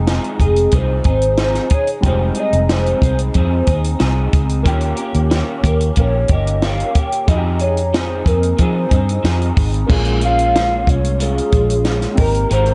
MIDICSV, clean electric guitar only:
0, 0, Header, 1, 2, 480
1, 0, Start_track
1, 0, Key_signature, -4, "minor"
1, 0, Tempo, 654308
1, 1502, Time_signature, 4, 2, 24, 8
1, 9347, End_track
2, 0, Start_track
2, 0, Title_t, "Clean electric guitar"
2, 0, Program_c, 0, 27
2, 52, Note_on_c, 0, 53, 76
2, 56, Note_on_c, 0, 60, 75
2, 65, Note_on_c, 0, 63, 84
2, 68, Note_on_c, 0, 68, 89
2, 286, Note_off_c, 0, 68, 0
2, 295, Note_on_c, 0, 68, 48
2, 297, Note_off_c, 0, 53, 0
2, 299, Note_off_c, 0, 60, 0
2, 300, Note_off_c, 0, 63, 0
2, 308, Note_on_c, 0, 63, 47
2, 321, Note_on_c, 0, 60, 36
2, 525, Note_off_c, 0, 60, 0
2, 526, Note_on_c, 0, 53, 62
2, 533, Note_off_c, 0, 63, 0
2, 534, Note_on_c, 0, 60, 58
2, 538, Note_off_c, 0, 68, 0
2, 542, Note_on_c, 0, 63, 66
2, 549, Note_on_c, 0, 68, 63
2, 759, Note_off_c, 0, 68, 0
2, 768, Note_on_c, 0, 68, 55
2, 774, Note_off_c, 0, 53, 0
2, 775, Note_off_c, 0, 63, 0
2, 778, Note_off_c, 0, 60, 0
2, 784, Note_on_c, 0, 63, 48
2, 794, Note_on_c, 0, 60, 46
2, 1008, Note_off_c, 0, 60, 0
2, 1012, Note_on_c, 0, 53, 75
2, 1013, Note_off_c, 0, 63, 0
2, 1015, Note_off_c, 0, 68, 0
2, 1017, Note_on_c, 0, 60, 75
2, 1022, Note_on_c, 0, 63, 84
2, 1030, Note_on_c, 0, 68, 85
2, 1241, Note_off_c, 0, 68, 0
2, 1250, Note_on_c, 0, 68, 54
2, 1257, Note_off_c, 0, 53, 0
2, 1258, Note_off_c, 0, 63, 0
2, 1260, Note_off_c, 0, 60, 0
2, 1266, Note_on_c, 0, 63, 43
2, 1494, Note_on_c, 0, 53, 75
2, 1496, Note_off_c, 0, 63, 0
2, 1496, Note_off_c, 0, 68, 0
2, 1502, Note_on_c, 0, 60, 76
2, 1505, Note_on_c, 0, 63, 80
2, 1511, Note_on_c, 0, 68, 84
2, 1723, Note_off_c, 0, 68, 0
2, 1732, Note_on_c, 0, 68, 54
2, 1738, Note_off_c, 0, 53, 0
2, 1738, Note_off_c, 0, 63, 0
2, 1742, Note_off_c, 0, 60, 0
2, 1747, Note_on_c, 0, 63, 46
2, 1759, Note_on_c, 0, 60, 40
2, 1977, Note_off_c, 0, 68, 0
2, 1978, Note_off_c, 0, 60, 0
2, 1983, Note_on_c, 0, 53, 77
2, 1985, Note_off_c, 0, 63, 0
2, 1987, Note_on_c, 0, 60, 78
2, 1995, Note_on_c, 0, 63, 69
2, 1999, Note_on_c, 0, 68, 72
2, 2208, Note_off_c, 0, 68, 0
2, 2217, Note_on_c, 0, 68, 53
2, 2220, Note_off_c, 0, 63, 0
2, 2223, Note_off_c, 0, 53, 0
2, 2225, Note_off_c, 0, 60, 0
2, 2229, Note_on_c, 0, 63, 50
2, 2242, Note_on_c, 0, 60, 42
2, 2455, Note_on_c, 0, 53, 55
2, 2458, Note_off_c, 0, 60, 0
2, 2460, Note_off_c, 0, 68, 0
2, 2462, Note_off_c, 0, 63, 0
2, 2467, Note_on_c, 0, 60, 62
2, 2471, Note_on_c, 0, 63, 62
2, 2480, Note_on_c, 0, 68, 70
2, 2682, Note_off_c, 0, 68, 0
2, 2691, Note_on_c, 0, 68, 52
2, 2699, Note_off_c, 0, 53, 0
2, 2702, Note_off_c, 0, 63, 0
2, 2705, Note_off_c, 0, 60, 0
2, 2711, Note_on_c, 0, 63, 48
2, 2721, Note_on_c, 0, 60, 41
2, 2928, Note_off_c, 0, 60, 0
2, 2929, Note_on_c, 0, 53, 76
2, 2932, Note_off_c, 0, 63, 0
2, 2935, Note_off_c, 0, 68, 0
2, 2937, Note_on_c, 0, 60, 76
2, 2940, Note_on_c, 0, 63, 81
2, 2944, Note_on_c, 0, 68, 80
2, 3162, Note_off_c, 0, 68, 0
2, 3171, Note_on_c, 0, 68, 54
2, 3176, Note_off_c, 0, 53, 0
2, 3176, Note_off_c, 0, 63, 0
2, 3180, Note_off_c, 0, 60, 0
2, 3185, Note_on_c, 0, 63, 44
2, 3196, Note_on_c, 0, 60, 47
2, 3406, Note_on_c, 0, 51, 85
2, 3409, Note_off_c, 0, 60, 0
2, 3412, Note_on_c, 0, 58, 91
2, 3415, Note_off_c, 0, 63, 0
2, 3417, Note_off_c, 0, 68, 0
2, 3418, Note_on_c, 0, 61, 95
2, 3425, Note_on_c, 0, 67, 99
2, 3631, Note_off_c, 0, 67, 0
2, 3640, Note_on_c, 0, 67, 63
2, 3647, Note_off_c, 0, 61, 0
2, 3654, Note_off_c, 0, 51, 0
2, 3656, Note_on_c, 0, 61, 53
2, 3657, Note_off_c, 0, 58, 0
2, 3666, Note_on_c, 0, 58, 46
2, 3887, Note_off_c, 0, 58, 0
2, 3889, Note_on_c, 0, 51, 86
2, 3891, Note_off_c, 0, 67, 0
2, 3894, Note_off_c, 0, 61, 0
2, 3896, Note_on_c, 0, 58, 91
2, 3902, Note_on_c, 0, 61, 86
2, 3909, Note_on_c, 0, 67, 84
2, 4122, Note_off_c, 0, 67, 0
2, 4131, Note_on_c, 0, 67, 51
2, 4136, Note_off_c, 0, 51, 0
2, 4136, Note_off_c, 0, 61, 0
2, 4139, Note_off_c, 0, 58, 0
2, 4145, Note_on_c, 0, 61, 48
2, 4156, Note_on_c, 0, 58, 41
2, 4374, Note_off_c, 0, 58, 0
2, 4375, Note_on_c, 0, 51, 54
2, 4376, Note_off_c, 0, 67, 0
2, 4383, Note_off_c, 0, 61, 0
2, 4383, Note_on_c, 0, 58, 58
2, 4392, Note_on_c, 0, 61, 67
2, 4402, Note_on_c, 0, 67, 59
2, 4610, Note_off_c, 0, 67, 0
2, 4619, Note_off_c, 0, 51, 0
2, 4619, Note_on_c, 0, 67, 57
2, 4623, Note_off_c, 0, 58, 0
2, 4624, Note_off_c, 0, 61, 0
2, 4633, Note_on_c, 0, 61, 47
2, 4643, Note_on_c, 0, 58, 44
2, 4860, Note_off_c, 0, 58, 0
2, 4861, Note_off_c, 0, 67, 0
2, 4863, Note_on_c, 0, 51, 75
2, 4865, Note_off_c, 0, 61, 0
2, 4869, Note_on_c, 0, 58, 77
2, 4874, Note_on_c, 0, 61, 86
2, 4881, Note_on_c, 0, 67, 91
2, 5082, Note_off_c, 0, 67, 0
2, 5091, Note_on_c, 0, 67, 51
2, 5099, Note_off_c, 0, 61, 0
2, 5103, Note_off_c, 0, 51, 0
2, 5106, Note_off_c, 0, 58, 0
2, 5108, Note_on_c, 0, 61, 47
2, 5117, Note_on_c, 0, 58, 38
2, 5337, Note_off_c, 0, 67, 0
2, 5337, Note_on_c, 0, 53, 80
2, 5339, Note_off_c, 0, 58, 0
2, 5342, Note_on_c, 0, 60, 91
2, 5345, Note_off_c, 0, 61, 0
2, 5349, Note_on_c, 0, 63, 88
2, 5355, Note_on_c, 0, 68, 97
2, 5564, Note_off_c, 0, 68, 0
2, 5573, Note_on_c, 0, 68, 45
2, 5577, Note_off_c, 0, 63, 0
2, 5580, Note_off_c, 0, 53, 0
2, 5582, Note_off_c, 0, 60, 0
2, 5586, Note_on_c, 0, 63, 53
2, 5816, Note_on_c, 0, 53, 64
2, 5817, Note_off_c, 0, 63, 0
2, 5817, Note_off_c, 0, 68, 0
2, 5822, Note_on_c, 0, 60, 77
2, 5826, Note_on_c, 0, 63, 78
2, 5833, Note_on_c, 0, 68, 75
2, 6041, Note_off_c, 0, 68, 0
2, 6050, Note_on_c, 0, 68, 52
2, 6056, Note_off_c, 0, 63, 0
2, 6059, Note_off_c, 0, 53, 0
2, 6062, Note_off_c, 0, 60, 0
2, 6065, Note_on_c, 0, 63, 45
2, 6076, Note_on_c, 0, 60, 47
2, 6287, Note_on_c, 0, 53, 52
2, 6291, Note_off_c, 0, 60, 0
2, 6296, Note_off_c, 0, 68, 0
2, 6298, Note_off_c, 0, 63, 0
2, 6299, Note_on_c, 0, 60, 59
2, 6307, Note_on_c, 0, 63, 60
2, 6315, Note_on_c, 0, 68, 69
2, 6511, Note_off_c, 0, 68, 0
2, 6520, Note_on_c, 0, 68, 52
2, 6527, Note_off_c, 0, 63, 0
2, 6534, Note_off_c, 0, 53, 0
2, 6536, Note_on_c, 0, 63, 47
2, 6538, Note_off_c, 0, 60, 0
2, 6547, Note_on_c, 0, 60, 46
2, 6769, Note_off_c, 0, 60, 0
2, 6770, Note_off_c, 0, 68, 0
2, 6770, Note_on_c, 0, 53, 76
2, 6776, Note_off_c, 0, 63, 0
2, 6778, Note_on_c, 0, 60, 74
2, 6785, Note_on_c, 0, 63, 71
2, 6789, Note_on_c, 0, 68, 80
2, 7005, Note_off_c, 0, 68, 0
2, 7014, Note_on_c, 0, 68, 53
2, 7016, Note_off_c, 0, 53, 0
2, 7017, Note_off_c, 0, 63, 0
2, 7020, Note_off_c, 0, 60, 0
2, 7026, Note_on_c, 0, 63, 51
2, 7039, Note_on_c, 0, 60, 47
2, 7245, Note_on_c, 0, 46, 89
2, 7254, Note_on_c, 0, 56, 98
2, 7257, Note_off_c, 0, 60, 0
2, 7257, Note_off_c, 0, 68, 0
2, 7260, Note_on_c, 0, 61, 93
2, 7261, Note_off_c, 0, 63, 0
2, 7264, Note_on_c, 0, 65, 92
2, 7489, Note_off_c, 0, 65, 0
2, 7493, Note_off_c, 0, 46, 0
2, 7497, Note_off_c, 0, 56, 0
2, 7498, Note_on_c, 0, 65, 53
2, 7500, Note_off_c, 0, 61, 0
2, 7511, Note_on_c, 0, 61, 46
2, 7524, Note_on_c, 0, 56, 42
2, 7734, Note_off_c, 0, 56, 0
2, 7736, Note_on_c, 0, 46, 72
2, 7739, Note_off_c, 0, 61, 0
2, 7739, Note_off_c, 0, 65, 0
2, 7743, Note_on_c, 0, 56, 71
2, 7748, Note_on_c, 0, 61, 75
2, 7752, Note_on_c, 0, 65, 75
2, 7966, Note_off_c, 0, 65, 0
2, 7975, Note_on_c, 0, 65, 49
2, 7978, Note_off_c, 0, 46, 0
2, 7981, Note_off_c, 0, 56, 0
2, 7982, Note_off_c, 0, 61, 0
2, 7991, Note_on_c, 0, 61, 52
2, 8001, Note_on_c, 0, 56, 39
2, 8205, Note_off_c, 0, 56, 0
2, 8206, Note_on_c, 0, 46, 58
2, 8214, Note_on_c, 0, 56, 64
2, 8216, Note_off_c, 0, 61, 0
2, 8217, Note_off_c, 0, 65, 0
2, 8225, Note_on_c, 0, 61, 64
2, 8232, Note_on_c, 0, 65, 61
2, 8440, Note_off_c, 0, 65, 0
2, 8449, Note_on_c, 0, 65, 52
2, 8453, Note_off_c, 0, 46, 0
2, 8455, Note_off_c, 0, 61, 0
2, 8457, Note_off_c, 0, 56, 0
2, 8464, Note_on_c, 0, 61, 49
2, 8478, Note_on_c, 0, 56, 46
2, 8689, Note_on_c, 0, 46, 73
2, 8690, Note_off_c, 0, 56, 0
2, 8694, Note_off_c, 0, 65, 0
2, 8697, Note_off_c, 0, 61, 0
2, 8699, Note_on_c, 0, 56, 80
2, 8706, Note_on_c, 0, 61, 84
2, 8711, Note_on_c, 0, 65, 83
2, 8934, Note_off_c, 0, 46, 0
2, 8934, Note_on_c, 0, 70, 53
2, 8939, Note_off_c, 0, 56, 0
2, 8942, Note_off_c, 0, 61, 0
2, 8945, Note_off_c, 0, 65, 0
2, 8948, Note_on_c, 0, 67, 42
2, 8962, Note_on_c, 0, 60, 39
2, 9166, Note_off_c, 0, 60, 0
2, 9168, Note_on_c, 0, 56, 79
2, 9174, Note_off_c, 0, 67, 0
2, 9175, Note_on_c, 0, 60, 82
2, 9176, Note_off_c, 0, 70, 0
2, 9183, Note_on_c, 0, 67, 79
2, 9184, Note_on_c, 0, 70, 86
2, 9347, Note_off_c, 0, 56, 0
2, 9347, Note_off_c, 0, 60, 0
2, 9347, Note_off_c, 0, 67, 0
2, 9347, Note_off_c, 0, 70, 0
2, 9347, End_track
0, 0, End_of_file